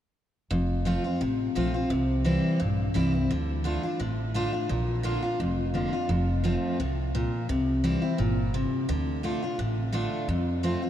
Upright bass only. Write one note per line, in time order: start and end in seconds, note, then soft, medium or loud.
0.51 0.97 F1 medium
1.21 1.50 A1 medium
1.55 1.85 A#1 medium
1.90 2.36 C2 loud
2.61 2.90 A#1 medium
2.96 3.25 C2 medium
3.31 3.76 D2 medium
4.00 4.46 A1 medium
4.70 5.15 A#1 medium
5.40 5.85 F1 medium
6.09 6.55 F1 loud
6.79 7.25 C2 medium
7.49 7.95 C2 medium
8.19 8.64 G1 medium
8.89 9.34 D2 medium
9.59 10.04 A1 medium
10.28 10.74 F2 medium